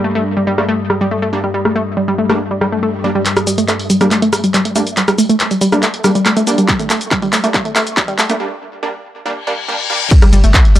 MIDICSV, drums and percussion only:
0, 0, Header, 1, 2, 480
1, 0, Start_track
1, 0, Key_signature, -2, "minor"
1, 0, Tempo, 428571
1, 1727, Time_signature, 4, 2, 24, 8
1, 12093, End_track
2, 0, Start_track
2, 0, Title_t, "Drums"
2, 650, Note_on_c, 9, 37, 87
2, 762, Note_off_c, 9, 37, 0
2, 1006, Note_on_c, 9, 37, 85
2, 1118, Note_off_c, 9, 37, 0
2, 1850, Note_on_c, 9, 37, 87
2, 1962, Note_off_c, 9, 37, 0
2, 2570, Note_on_c, 9, 37, 86
2, 2682, Note_off_c, 9, 37, 0
2, 2926, Note_on_c, 9, 37, 85
2, 3038, Note_off_c, 9, 37, 0
2, 3646, Note_on_c, 9, 39, 49
2, 3646, Note_on_c, 9, 42, 92
2, 3646, Note_on_c, 9, 82, 40
2, 3758, Note_off_c, 9, 39, 0
2, 3758, Note_off_c, 9, 42, 0
2, 3758, Note_off_c, 9, 82, 0
2, 3770, Note_on_c, 9, 37, 89
2, 3770, Note_on_c, 9, 42, 56
2, 3770, Note_on_c, 9, 82, 28
2, 3882, Note_off_c, 9, 37, 0
2, 3882, Note_off_c, 9, 42, 0
2, 3882, Note_off_c, 9, 82, 0
2, 3887, Note_on_c, 9, 46, 108
2, 3887, Note_on_c, 9, 82, 69
2, 3999, Note_off_c, 9, 46, 0
2, 3999, Note_off_c, 9, 82, 0
2, 4010, Note_on_c, 9, 42, 57
2, 4010, Note_on_c, 9, 82, 31
2, 4122, Note_off_c, 9, 42, 0
2, 4122, Note_off_c, 9, 82, 0
2, 4127, Note_on_c, 9, 39, 48
2, 4127, Note_on_c, 9, 42, 89
2, 4127, Note_on_c, 9, 82, 39
2, 4239, Note_off_c, 9, 39, 0
2, 4239, Note_off_c, 9, 42, 0
2, 4239, Note_off_c, 9, 82, 0
2, 4250, Note_on_c, 9, 46, 63
2, 4362, Note_off_c, 9, 46, 0
2, 4366, Note_on_c, 9, 46, 107
2, 4366, Note_on_c, 9, 82, 68
2, 4478, Note_off_c, 9, 46, 0
2, 4478, Note_off_c, 9, 82, 0
2, 4490, Note_on_c, 9, 37, 85
2, 4490, Note_on_c, 9, 42, 52
2, 4490, Note_on_c, 9, 82, 30
2, 4602, Note_off_c, 9, 37, 0
2, 4602, Note_off_c, 9, 42, 0
2, 4602, Note_off_c, 9, 82, 0
2, 4607, Note_on_c, 9, 39, 51
2, 4607, Note_on_c, 9, 42, 90
2, 4607, Note_on_c, 9, 82, 41
2, 4719, Note_off_c, 9, 39, 0
2, 4719, Note_off_c, 9, 42, 0
2, 4719, Note_off_c, 9, 82, 0
2, 4730, Note_on_c, 9, 42, 58
2, 4842, Note_off_c, 9, 42, 0
2, 4846, Note_on_c, 9, 37, 88
2, 4846, Note_on_c, 9, 46, 101
2, 4846, Note_on_c, 9, 82, 68
2, 4958, Note_off_c, 9, 37, 0
2, 4958, Note_off_c, 9, 46, 0
2, 4958, Note_off_c, 9, 82, 0
2, 4970, Note_on_c, 9, 42, 55
2, 4970, Note_on_c, 9, 82, 29
2, 5082, Note_off_c, 9, 42, 0
2, 5082, Note_off_c, 9, 82, 0
2, 5087, Note_on_c, 9, 39, 56
2, 5087, Note_on_c, 9, 42, 101
2, 5087, Note_on_c, 9, 82, 39
2, 5199, Note_off_c, 9, 39, 0
2, 5199, Note_off_c, 9, 42, 0
2, 5199, Note_off_c, 9, 82, 0
2, 5210, Note_on_c, 9, 42, 55
2, 5322, Note_off_c, 9, 42, 0
2, 5327, Note_on_c, 9, 46, 102
2, 5327, Note_on_c, 9, 82, 67
2, 5439, Note_off_c, 9, 46, 0
2, 5439, Note_off_c, 9, 82, 0
2, 5450, Note_on_c, 9, 42, 54
2, 5450, Note_on_c, 9, 82, 30
2, 5562, Note_off_c, 9, 42, 0
2, 5562, Note_off_c, 9, 82, 0
2, 5567, Note_on_c, 9, 39, 56
2, 5567, Note_on_c, 9, 42, 98
2, 5567, Note_on_c, 9, 82, 42
2, 5679, Note_off_c, 9, 39, 0
2, 5679, Note_off_c, 9, 42, 0
2, 5679, Note_off_c, 9, 82, 0
2, 5690, Note_on_c, 9, 37, 94
2, 5690, Note_on_c, 9, 42, 55
2, 5690, Note_on_c, 9, 82, 29
2, 5802, Note_off_c, 9, 37, 0
2, 5802, Note_off_c, 9, 42, 0
2, 5802, Note_off_c, 9, 82, 0
2, 5807, Note_on_c, 9, 46, 107
2, 5807, Note_on_c, 9, 82, 70
2, 5919, Note_off_c, 9, 46, 0
2, 5919, Note_off_c, 9, 82, 0
2, 5931, Note_on_c, 9, 42, 54
2, 5931, Note_on_c, 9, 82, 30
2, 6043, Note_off_c, 9, 42, 0
2, 6043, Note_off_c, 9, 82, 0
2, 6047, Note_on_c, 9, 39, 61
2, 6047, Note_on_c, 9, 42, 93
2, 6047, Note_on_c, 9, 82, 39
2, 6159, Note_off_c, 9, 39, 0
2, 6159, Note_off_c, 9, 42, 0
2, 6159, Note_off_c, 9, 82, 0
2, 6171, Note_on_c, 9, 46, 66
2, 6171, Note_on_c, 9, 82, 29
2, 6283, Note_off_c, 9, 46, 0
2, 6283, Note_off_c, 9, 82, 0
2, 6287, Note_on_c, 9, 46, 105
2, 6287, Note_on_c, 9, 82, 70
2, 6399, Note_off_c, 9, 46, 0
2, 6399, Note_off_c, 9, 82, 0
2, 6411, Note_on_c, 9, 37, 92
2, 6411, Note_on_c, 9, 42, 56
2, 6411, Note_on_c, 9, 82, 31
2, 6523, Note_off_c, 9, 37, 0
2, 6523, Note_off_c, 9, 42, 0
2, 6523, Note_off_c, 9, 82, 0
2, 6527, Note_on_c, 9, 39, 64
2, 6527, Note_on_c, 9, 42, 89
2, 6527, Note_on_c, 9, 82, 41
2, 6639, Note_off_c, 9, 39, 0
2, 6639, Note_off_c, 9, 42, 0
2, 6639, Note_off_c, 9, 82, 0
2, 6650, Note_on_c, 9, 42, 55
2, 6762, Note_off_c, 9, 42, 0
2, 6767, Note_on_c, 9, 37, 94
2, 6767, Note_on_c, 9, 46, 106
2, 6767, Note_on_c, 9, 82, 71
2, 6879, Note_off_c, 9, 37, 0
2, 6879, Note_off_c, 9, 46, 0
2, 6879, Note_off_c, 9, 82, 0
2, 6891, Note_on_c, 9, 42, 55
2, 6891, Note_on_c, 9, 82, 30
2, 7003, Note_off_c, 9, 42, 0
2, 7003, Note_off_c, 9, 82, 0
2, 7007, Note_on_c, 9, 39, 73
2, 7007, Note_on_c, 9, 42, 97
2, 7007, Note_on_c, 9, 82, 40
2, 7119, Note_off_c, 9, 39, 0
2, 7119, Note_off_c, 9, 42, 0
2, 7119, Note_off_c, 9, 82, 0
2, 7130, Note_on_c, 9, 42, 59
2, 7130, Note_on_c, 9, 82, 28
2, 7242, Note_off_c, 9, 42, 0
2, 7242, Note_off_c, 9, 82, 0
2, 7247, Note_on_c, 9, 46, 105
2, 7247, Note_on_c, 9, 82, 66
2, 7359, Note_off_c, 9, 46, 0
2, 7359, Note_off_c, 9, 82, 0
2, 7371, Note_on_c, 9, 42, 55
2, 7371, Note_on_c, 9, 82, 29
2, 7483, Note_off_c, 9, 42, 0
2, 7483, Note_off_c, 9, 82, 0
2, 7487, Note_on_c, 9, 36, 124
2, 7487, Note_on_c, 9, 39, 72
2, 7487, Note_on_c, 9, 42, 94
2, 7487, Note_on_c, 9, 82, 41
2, 7599, Note_off_c, 9, 36, 0
2, 7599, Note_off_c, 9, 39, 0
2, 7599, Note_off_c, 9, 42, 0
2, 7599, Note_off_c, 9, 82, 0
2, 7611, Note_on_c, 9, 42, 56
2, 7611, Note_on_c, 9, 82, 30
2, 7723, Note_off_c, 9, 42, 0
2, 7723, Note_off_c, 9, 82, 0
2, 7727, Note_on_c, 9, 39, 74
2, 7727, Note_on_c, 9, 46, 116
2, 7727, Note_on_c, 9, 82, 70
2, 7839, Note_off_c, 9, 39, 0
2, 7839, Note_off_c, 9, 46, 0
2, 7839, Note_off_c, 9, 82, 0
2, 7851, Note_on_c, 9, 42, 53
2, 7851, Note_on_c, 9, 82, 33
2, 7963, Note_off_c, 9, 42, 0
2, 7963, Note_off_c, 9, 82, 0
2, 7967, Note_on_c, 9, 36, 124
2, 7967, Note_on_c, 9, 39, 71
2, 7967, Note_on_c, 9, 42, 92
2, 7967, Note_on_c, 9, 82, 40
2, 8079, Note_off_c, 9, 36, 0
2, 8079, Note_off_c, 9, 39, 0
2, 8079, Note_off_c, 9, 42, 0
2, 8079, Note_off_c, 9, 82, 0
2, 8090, Note_on_c, 9, 46, 68
2, 8202, Note_off_c, 9, 46, 0
2, 8207, Note_on_c, 9, 39, 84
2, 8207, Note_on_c, 9, 46, 109
2, 8207, Note_on_c, 9, 82, 71
2, 8319, Note_off_c, 9, 39, 0
2, 8319, Note_off_c, 9, 46, 0
2, 8319, Note_off_c, 9, 82, 0
2, 8330, Note_on_c, 9, 42, 55
2, 8330, Note_on_c, 9, 82, 31
2, 8442, Note_off_c, 9, 42, 0
2, 8442, Note_off_c, 9, 82, 0
2, 8447, Note_on_c, 9, 36, 126
2, 8447, Note_on_c, 9, 39, 80
2, 8447, Note_on_c, 9, 42, 92
2, 8447, Note_on_c, 9, 82, 41
2, 8559, Note_off_c, 9, 36, 0
2, 8559, Note_off_c, 9, 39, 0
2, 8559, Note_off_c, 9, 42, 0
2, 8559, Note_off_c, 9, 82, 0
2, 8571, Note_on_c, 9, 42, 57
2, 8683, Note_off_c, 9, 42, 0
2, 8687, Note_on_c, 9, 39, 89
2, 8687, Note_on_c, 9, 46, 107
2, 8687, Note_on_c, 9, 82, 71
2, 8799, Note_off_c, 9, 39, 0
2, 8799, Note_off_c, 9, 46, 0
2, 8799, Note_off_c, 9, 82, 0
2, 8810, Note_on_c, 9, 42, 56
2, 8810, Note_on_c, 9, 82, 30
2, 8922, Note_off_c, 9, 42, 0
2, 8922, Note_off_c, 9, 82, 0
2, 8927, Note_on_c, 9, 36, 127
2, 8927, Note_on_c, 9, 39, 90
2, 8927, Note_on_c, 9, 42, 97
2, 8927, Note_on_c, 9, 82, 42
2, 9039, Note_off_c, 9, 36, 0
2, 9039, Note_off_c, 9, 39, 0
2, 9039, Note_off_c, 9, 42, 0
2, 9039, Note_off_c, 9, 82, 0
2, 9051, Note_on_c, 9, 42, 56
2, 9163, Note_off_c, 9, 42, 0
2, 9167, Note_on_c, 9, 39, 87
2, 9167, Note_on_c, 9, 46, 107
2, 9167, Note_on_c, 9, 82, 68
2, 9279, Note_off_c, 9, 39, 0
2, 9279, Note_off_c, 9, 46, 0
2, 9279, Note_off_c, 9, 82, 0
2, 9291, Note_on_c, 9, 42, 54
2, 9291, Note_on_c, 9, 82, 32
2, 9403, Note_off_c, 9, 42, 0
2, 9403, Note_off_c, 9, 82, 0
2, 11326, Note_on_c, 9, 36, 122
2, 11326, Note_on_c, 9, 42, 97
2, 11326, Note_on_c, 9, 49, 108
2, 11326, Note_on_c, 9, 82, 39
2, 11438, Note_off_c, 9, 36, 0
2, 11438, Note_off_c, 9, 42, 0
2, 11438, Note_off_c, 9, 49, 0
2, 11438, Note_off_c, 9, 82, 0
2, 11450, Note_on_c, 9, 37, 93
2, 11450, Note_on_c, 9, 42, 57
2, 11450, Note_on_c, 9, 82, 29
2, 11562, Note_off_c, 9, 37, 0
2, 11562, Note_off_c, 9, 42, 0
2, 11562, Note_off_c, 9, 82, 0
2, 11566, Note_on_c, 9, 46, 107
2, 11566, Note_on_c, 9, 82, 71
2, 11678, Note_off_c, 9, 46, 0
2, 11678, Note_off_c, 9, 82, 0
2, 11690, Note_on_c, 9, 42, 59
2, 11690, Note_on_c, 9, 82, 33
2, 11802, Note_off_c, 9, 42, 0
2, 11802, Note_off_c, 9, 82, 0
2, 11806, Note_on_c, 9, 39, 119
2, 11806, Note_on_c, 9, 42, 91
2, 11806, Note_on_c, 9, 82, 39
2, 11807, Note_on_c, 9, 36, 117
2, 11918, Note_off_c, 9, 39, 0
2, 11918, Note_off_c, 9, 42, 0
2, 11918, Note_off_c, 9, 82, 0
2, 11919, Note_off_c, 9, 36, 0
2, 11930, Note_on_c, 9, 42, 57
2, 12042, Note_off_c, 9, 42, 0
2, 12046, Note_on_c, 9, 46, 103
2, 12046, Note_on_c, 9, 82, 71
2, 12093, Note_off_c, 9, 46, 0
2, 12093, Note_off_c, 9, 82, 0
2, 12093, End_track
0, 0, End_of_file